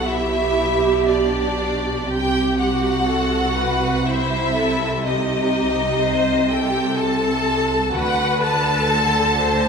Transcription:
Already playing: double bass section B1, cello section B2
0.07 violin section E4 E5, viola section G4
1.09 violin section D4 D5
2.07 double bass section C2, cello section C3, viola section G4, violin section G4 G5
2.59 violin section F#4 F#5
3.08 viola section A4
3.58 viola section B4
4.07 violin section E4 E5, viola section C5
4.55 viola section A4
5.05 violin section D#4 D#5, viola section G4
6.02 viola section C5
6.50 violin section G4 G5, viola section A4
6.98 violin section A4 A5
7.93 double bass section D2, cello section D3, violin section F#4 F#5, viola section B4
8.40 violin section A4 A5
8.88 viola section A4
9.36 viola section C5

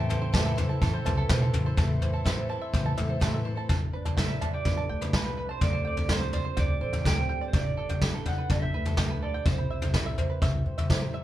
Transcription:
Already playing: upright bass A1, fiddle C4, five-string banjo C5 A5, clean electric guitar E5
0.09 twelve-string acoustic guitar E3 C4 E4 A4, five-string banjo A4, floor tom
0.22 five-string banjo C5
0.33 twelve-string acoustic guitar A2 E3 C4 E4 A4, five-string banjo A5, kick, snare, floor tom
0.45 five-string banjo A4
0.57 twelve-string acoustic guitar E3 C4 E4 A4, five-string banjo C5, floor tom
0.69 twelve-string acoustic guitar C4 E4 A4, five-string banjo A5
0.82 upright bass A1, five-string banjo A4, kick, floor tom
0.93 twelve-string acoustic guitar C4 E4 A4, five-string banjo C5
1.05 upright bass C2, twelve-string acoustic guitar E3 C4 E4 A4, five-string banjo A5, floor tom
1.17 five-string banjo A4
1.29 upright bass B1, twelve-string acoustic guitar A2 E3 C4 E4 A4, five-string banjo C5, kick, snare, floor tom
1.41 twelve-string acoustic guitar C4 E4 A4, five-string banjo A5
1.53 upright bass A1, floor tom
1.65 twelve-string acoustic guitar C4 E4 A4, five-string banjo C5
1.77 upright bass A1, twelve-string acoustic guitar A2 E3 C4 E4 A4, steel-string acoustic guitar A2, five-string banjo A5, kick, floor tom
2.01 twelve-string acoustic guitar E3 C4 E4 A4, steel-string acoustic guitar E4, five-string banjo C5, floor tom
2.13 twelve-string acoustic guitar C4 E4 A4, five-string banjo A5
2.24 twelve-string acoustic guitar A2 E3 C4 E4 A4, steel-string acoustic guitar C5, five-string banjo E5, kick, snare
2.38 five-string banjo C5
2.48 twelve-string acoustic guitar E3 C4 E4 A4, steel-string acoustic guitar E4, five-string banjo A5
2.62 five-string banjo E5
2.72 upright bass A1, twelve-string acoustic guitar E3 C4 E4 A4, steel-string acoustic guitar E3, five-string banjo C5, kick, floor tom
2.84 twelve-string acoustic guitar C4 E4 A4, five-string banjo A5
2.96 upright bass A1, twelve-string acoustic guitar E3 C4 E4 A4, steel-string acoustic guitar A3, five-string banjo E5, floor tom
3.08 twelve-string acoustic guitar C4 E4 A4, five-string banjo C5
3.20 twelve-string acoustic guitar A2 E3 C4 E4 A4, steel-string acoustic guitar B2, five-string banjo A5, kick, snare
3.34 five-string banjo E5
3.43 steel-string acoustic guitar A2, twelve-string acoustic guitar E3 C4 E4 A4, five-string banjo C5
3.55 twelve-string acoustic guitar C4 E4 A4, five-string banjo A5
3.69 upright bass G1, steel-string acoustic guitar G2, five-string banjo A5, kick, floor tom
3.93 steel-string acoustic guitar D4, five-string banjo B4
4.05 five-string banjo A5, floor tom
4.17 steel-string acoustic guitar G3, clean electric guitar E5, five-string banjo G5, kick, snare
4.29 five-string banjo B4
4.41 steel-string acoustic guitar D4, five-string banjo A5, floor tom
4.53 clean electric guitar D5, five-string banjo G5
4.65 upright bass G1, steel-string acoustic guitar A4, five-string banjo B4, kick, floor tom
4.77 five-string banjo A5
4.89 upright bass D2, steel-string acoustic guitar B4, five-string banjo G5
5.01 five-string banjo B4, floor tom
5.13 upright bass C2, steel-string acoustic guitar B2, clean electric guitar B4, five-string banjo A5, kick, snare
5.25 five-string banjo G5
5.37 steel-string acoustic guitar C3, five-string banjo B4
5.49 clean electric guitar C5, five-string banjo A5
5.61 upright bass D2, steel-string acoustic guitar D3, five-string banjo D5, clean electric guitar D5, kick, floor tom
5.73 five-string banjo C5
5.85 steel-string acoustic guitar C4, clean electric guitar D5, five-string banjo G5
5.97 five-string banjo D5, floor tom
6.09 steel-string acoustic guitar G3, five-string banjo C5, clean electric guitar C5, kick, snare
6.21 five-string banjo G5
6.33 steel-string acoustic guitar C4, clean electric guitar C5, five-string banjo D5, floor tom
6.45 five-string banjo C5
6.57 upright bass D2, steel-string acoustic guitar G4, clean electric guitar D5, five-string banjo G5, kick, floor tom
6.81 upright bass A1, steel-string acoustic guitar A4, five-string banjo C5
6.93 five-string banjo G5, floor tom
7.04 upright bass D2, steel-string acoustic guitar C4, five-string banjo D5, clean electric guitar G5, kick, snare
7.17 five-string banjo C5
7.29 steel-string acoustic guitar G3, five-string banjo G5
7.41 five-string banjo D5
7.48 clean electric guitar C5
7.53 upright bass G1, steel-string acoustic guitar G2, clean electric guitar D5, five-string banjo G5, kick, floor tom
7.77 steel-string acoustic guitar D4, five-string banjo A4
7.89 five-string banjo G5, floor tom
8.02 steel-string acoustic guitar G3, five-string banjo B4, kick, snare
8.14 five-string banjo A4
8.26 steel-string acoustic guitar D4, clean electric guitar F#5, five-string banjo G5, floor tom
8.38 five-string banjo B4
8.50 upright bass G1, five-string banjo A4, steel-string acoustic guitar A4, clean electric guitar E5, kick, floor tom
8.62 five-string banjo G5
8.74 upright bass D2, five-string banjo B4, steel-string acoustic guitar B4
8.85 five-string banjo A4, floor tom
8.97 upright bass D2, steel-string acoustic guitar A2, five-string banjo G5, kick, snare
9.10 five-string banjo B4
9.22 steel-string acoustic guitar B2, five-string banjo A4, clean electric guitar D5
9.34 five-string banjo G5
9.45 upright bass C2, steel-string acoustic guitar C3, clean electric guitar C5, five-string banjo C5, kick, floor tom
9.58 five-string banjo B5
9.70 steel-string acoustic guitar E4, five-string banjo E5
9.82 five-string banjo C5, floor tom
9.94 steel-string acoustic guitar G3, five-string banjo B5, kick, snare
10.06 five-string banjo E5
10.18 steel-string acoustic guitar E4, five-string banjo C5, floor tom
10.30 five-string banjo B4
10.42 upright bass C2, steel-string acoustic guitar G4, five-string banjo E5, kick, floor tom
10.66 upright bass G2, steel-string acoustic guitar C5
10.78 five-string banjo E5, floor tom
10.90 upright bass G2, steel-string acoustic guitar E4, five-string banjo C5, kick, snare
11.13 steel-string acoustic guitar G3, five-string banjo E5

